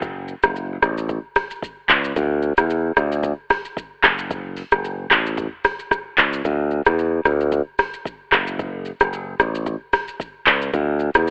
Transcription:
0.00 0.33 F#1 loud
0.00 kick loud
0.00 shaker medium
0.28 shaker soft
0.43 0.76 F#1 medium
0.43 kick medium
0.43 cross-stick loud
0.43 shaker medium
0.56 shaker medium
0.82 1.18 A1 medium
0.82 cross-stick loud
0.82 shaker medium
0.98 shaker medium
1.09 kick loud
1.09 shaker medium
1.36 kick loud
1.36 cross-stick loud
1.36 open hi-hat medium
1.36 shaker medium
1.51 shaker medium
1.62 kick loud
1.62 shaker medium
1.89 2.12 C#2 medium
1.89 clap medium
1.89 shaker soft
2.04 shaker medium
2.16 2.52 D2 loud
2.16 kick loud
2.16 shaker medium
2.42 shaker medium
2.57 2.91 E2 medium
2.57 kick loud
2.57 cross-stick loud
2.57 shaker medium
2.70 shaker medium
2.97 3.32 D2 loud
2.97 cross-stick loud
2.97 shaker medium
3.12 shaker medium
3.23 kick loud
3.23 shaker medium
3.50 kick loud
3.50 cross-stick loud
3.50 open hi-hat medium
3.50 shaker medium
3.65 shaker medium
3.77 kick loud
3.77 shaker medium
4.04 4.62 F#1 loud
4.04 cross-stick medium
4.04 clap loud
4.04 shaker medium
4.19 shaker medium
4.31 kick loud
4.31 shaker medium
4.57 open hi-hat soft
4.57 shaker soft
4.72 5.05 F#1 medium
4.72 kick loud
4.72 cross-stick loud
4.72 shaker medium
4.84 shaker medium
5.11 5.46 A1 loud
5.11 cross-stick medium
5.11 clap medium
5.11 shaker medium
5.26 shaker medium
5.37 kick loud
5.37 mid tom loud
5.37 shaker medium
5.64 kick loud
5.64 cross-stick loud
5.64 open hi-hat medium
5.64 shaker medium
5.79 shaker medium
5.91 kick loud
5.91 cross-stick medium
5.91 shaker medium
6.18 6.41 C#2 medium
6.18 clap medium
6.18 shaker soft
6.33 shaker medium
6.45 6.80 D2 loud
6.45 kick loud
6.45 shaker medium
6.71 shaker soft
6.86 7.19 E2 medium
6.86 kick loud
6.86 cross-stick loud
6.86 shaker medium
6.99 shaker medium
7.25 7.61 D2 loud
7.25 cross-stick medium
7.25 shaker medium
7.41 shaker medium
7.52 kick loud
7.52 shaker medium
7.79 kick loud
7.79 cross-stick loud
7.79 open hi-hat medium
7.79 shaker medium
7.94 shaker medium
8.05 kick loud
8.05 shaker medium
8.32 8.90 F#1 loud
8.32 cross-stick medium
8.32 clap loud
8.32 shaker soft
8.47 shaker medium
8.59 kick loud
8.59 shaker medium
8.85 shaker soft
9.00 9.34 F#1 medium
9.00 kick loud
9.00 cross-stick loud
9.00 shaker medium
9.13 shaker medium
9.40 9.75 A1 loud
9.40 cross-stick loud
9.40 shaker medium
9.55 shaker medium
9.66 kick loud
9.66 shaker medium
9.93 kick loud
9.93 cross-stick loud
9.93 open hi-hat medium
9.93 shaker medium
10.08 shaker medium
10.20 kick loud
10.20 shaker medium
10.47 10.69 C#2 medium
10.47 clap loud
10.47 shaker medium
10.62 shaker medium
10.74 11.09 D2 loud
10.74 kick loud
10.74 shaker medium
10.99 shaker soft
11.15 11.30 E2 medium
11.15 kick loud
11.15 cross-stick loud
11.15 shaker medium

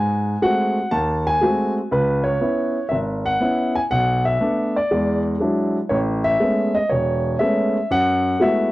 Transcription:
0.00 0.34 G#2 medium
0.00 0.43 G#5 medium
0.42 0.77 G#3 soft
0.42 0.77 A3 soft
0.42 0.77 C4 soft
0.42 0.77 F#4 medium
0.42 0.93 F#5 medium
0.91 1.35 D#2 medium
0.91 1.26 A5 medium
1.27 1.72 G#5 loud
1.41 1.77 G#3 soft
1.41 1.77 A3 soft
1.41 1.77 C4 soft
1.41 1.77 F#4 medium
1.91 2.35 C#2 medium
1.91 2.23 B4 medium
2.24 2.86 C#5 medium
2.41 2.76 B3 soft
2.41 2.76 C#4 soft
2.41 2.77 E4 medium
2.89 3.35 G#1 medium
2.89 2.97 E5 medium
3.26 3.71 F#5 medium
3.40 3.76 B3 medium
3.40 3.76 C#4 soft
3.40 3.77 E4 medium
3.75 3.80 G#5 loud
3.91 4.34 B1 medium
3.91 4.22 F#5 loud
4.25 4.76 E5 medium
4.40 4.76 A3 soft
4.40 4.76 B3 soft
4.40 4.76 D4 medium
4.76 5.22 D5 medium
4.91 5.34 E2 medium
4.91 5.34 G#3 medium
5.40 5.76 F#3 medium
5.40 5.76 G#3 soft
5.40 5.76 D4 medium
5.40 5.76 E4 medium
5.89 6.34 A1 medium
5.89 5.97 C#5 medium
6.24 6.76 E5 loud
6.40 6.76 G#3 soft
6.40 6.76 A3 soft
6.40 6.76 B3 soft
6.40 6.76 C#4 medium
6.75 6.89 D#5 medium
6.89 7.34 E1 medium
6.89 7.41 C#5 medium
7.39 7.76 G#3 medium
7.39 7.76 A3 soft
7.39 7.76 B3 medium
7.39 7.76 C#4 medium
7.39 7.91 E5 medium
7.91 8.34 F#2 medium
7.91 8.42 F#5 loud
8.40 8.72 G#3 soft
8.40 8.72 A3 soft
8.40 8.72 B3 soft
8.40 8.72 E4 soft
8.40 8.72 F#4 medium
8.40 8.72 E5 medium

